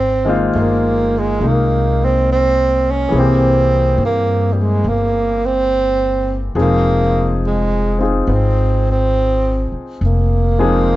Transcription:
Already playing: upright bass G#1, tenor saxophone C4
0.25 grand piano D#3 G#3 A#3 C5
0.29 grand piano F4
0.55 upright bass G1, tenor saxophone A3
0.60 tenor saxophone A#3
1.18 tenor saxophone G#3
1.40 upright bass C2, grand piano G#3 A#3
1.44 tenor saxophone A#3, grand piano D#4
2.05 tenor saxophone C4
2.32 tenor saxophone C4
2.91 tenor saxophone C#4
3.09 upright bass C2, grand piano E3 G#4
3.14 grand piano A#3 C4
3.19 tenor saxophone C4, grand piano G4
3.98 upright bass G2
4.05 tenor saxophone A#3
4.53 tenor saxophone G3
4.62 tenor saxophone G#3
4.84 upright bass G1, tenor saxophone A#3
5.46 tenor saxophone C4
6.55 upright bass F1, grand piano F3 G#3 C4 D#4 G#4
6.61 tenor saxophone A#3
7.47 tenor saxophone G#3
7.99 grand piano C4 D#4 F4 G#4
8.27 upright bass G#1, tenor saxophone B3
8.33 tenor saxophone C4
8.91 tenor saxophone C4
9.72 muted upright bass stroke
10.01 upright bass F1
10.06 tenor saxophone A#3
10.59 grand piano F3 G#3 C4 D#4 G#4

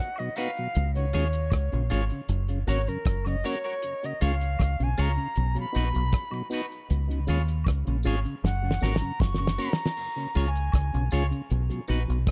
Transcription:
Already playing: flute F#5
0.16 tonewheel organ F#3, flute D#5, muted clean electric guitar stroke, closed hi-hat, high woodblock
0.20 tonewheel organ B2
0.36 tonewheel organ B3 D#4 F#4, clean electric guitar D#4 F#4 B4, flute F5, closed hi-hat, tambourine
0.57 tonewheel organ B2 F#3, closed hi-hat
0.75 fingered electric bass C#2, closed hi-hat
0.95 tonewheel organ C#3, flute C#5, closed hi-hat
1.13 fingered electric bass D#2, tonewheel organ G#3 C#4 F4, clean electric guitar F4 G#4 C#5, closed hi-hat, tambourine
1.33 closed hi-hat
1.50 fingered electric bass C#2, kick, cross-stick, closed hi-hat, high woodblock
1.72 fingered electric bass A#1, tonewheel organ C#3, closed hi-hat
1.90 fingered electric bass G#1, tonewheel organ G#3 C#4 F4, clean electric guitar F4 G#4 C#5, closed hi-hat, tambourine
2.10 tonewheel organ C#3, closed hi-hat
2.29 fingered electric bass F#1, closed hi-hat
2.48 tonewheel organ F#2 C#3, closed hi-hat
2.67 fingered electric bass G#1, tonewheel organ A#3 C#4 F#4, clean electric guitar F#4 A#4 C#5, flute C#5, closed hi-hat, tambourine
2.87 tonewheel organ F#2 C#3, flute A#4, closed hi-hat
3.05 fingered electric bass F#1, kick, cross-stick, closed hi-hat
3.25 tonewheel organ F#2 C#3, flute D#5, cross-stick, closed hi-hat, high woodblock
3.44 tonewheel organ A#3 C#4 F#4, clean electric guitar F#4 A#4 C#5, flute C#5, closed hi-hat, tambourine
3.64 clean electric guitar F#4 A#4 C#5, closed hi-hat
3.82 closed hi-hat
4.04 tonewheel organ C#3, flute D#5, closed hi-hat
4.21 fingered electric bass C#2, tonewheel organ G#3 C#4 F4, clean electric guitar F4 G#4 C#5, flute F5, closed hi-hat, tambourine
4.41 closed hi-hat
4.59 fingered electric bass C#2, kick, cross-stick, closed hi-hat, high woodblock
4.80 fingered electric bass B1, tonewheel organ C#3, flute G#5, closed hi-hat
4.97 fingered electric bass C#2, tonewheel organ G#3 C#4 F4, clean electric guitar F4 G#4 C#5, flute A#5, closed hi-hat, tambourine
5.17 tonewheel organ C#3, closed hi-hat
5.36 fingered electric bass B1, closed hi-hat
5.55 tonewheel organ B2 F#3, closed hi-hat
5.60 flute B5
5.72 fingered electric bass A#1, tonewheel organ B3 D#4 F#4, clean electric guitar D#4 F#4, closed hi-hat, tambourine
5.77 clean electric guitar B4
5.93 fingered electric bass B1, tonewheel organ B2 F#3, closed hi-hat
6.12 kick, cross-stick, closed hi-hat
6.31 tonewheel organ B2 F#3, muted clean electric guitar stroke, closed hi-hat, high woodblock
6.50 tonewheel organ B3 D#4 F#4, clean electric guitar D#4 F#4, closed hi-hat, tambourine
6.54 clean electric guitar B4
6.72 closed hi-hat
6.90 fingered electric bass C#2, closed hi-hat
7.09 tonewheel organ C#3, closed hi-hat
7.27 fingered electric bass D#2, tonewheel organ G#3 C#4 F4, clean electric guitar F4 G#4 C#5, closed hi-hat, tambourine
7.48 closed hi-hat
7.64 fingered electric bass C#2, kick, cross-stick, closed hi-hat, high woodblock
7.87 fingered electric bass A#1, tonewheel organ C#3, closed hi-hat
8.03 fingered electric bass G#1, tonewheel organ G#3 C#4 F4, clean electric guitar F4 G#4 C#5, closed hi-hat, tambourine
8.25 tonewheel organ C#3, closed hi-hat
8.44 fingered electric bass F#1, flute F#5, snare
8.63 tonewheel organ F#2 C#3
8.71 snare
8.80 fingered electric bass G#1, tonewheel organ A#3 C#4 F#4, clean electric guitar F#4 A#4 C#5, snare, tambourine
8.95 flute A#5, snare
9.01 tonewheel organ F#2 C#3
9.20 fingered electric bass F#1, flute C#6, kick, snare
9.34 snare, high woodblock
9.39 tonewheel organ F#2 C#3
9.47 snare
9.58 tonewheel organ A#3 C#4 F#4, clean electric guitar F#4 A#4 C#5, tambourine
9.71 flute A#5, snare
9.86 snare
9.97 crash
10.16 tonewheel organ C#3, closed hi-hat
10.35 fingered electric bass C#2, tonewheel organ G#3 C#4 F4, clean electric guitar F4 G#4 C#5, closed hi-hat, tambourine
10.48 flute G#5
10.55 closed hi-hat
10.72 fingered electric bass C#2, kick, cross-stick, closed hi-hat, high woodblock
10.93 fingered electric bass B1, tonewheel organ C#3, closed hi-hat
11.11 fingered electric bass C#2, tonewheel organ G#3 C#4 F4, clean electric guitar F4 G#4 C#5, closed hi-hat, tambourine
11.31 tonewheel organ C#3, closed hi-hat
11.50 fingered electric bass B1, closed hi-hat
11.69 tonewheel organ B2 F#3, closed hi-hat
11.88 fingered electric bass A#1, tonewheel organ B3 D#4 F#4, clean electric guitar D#4 F#4 B4, closed hi-hat, tambourine
12.08 fingered electric bass B1, tonewheel organ B2 F#3, closed hi-hat
12.27 kick, closed hi-hat

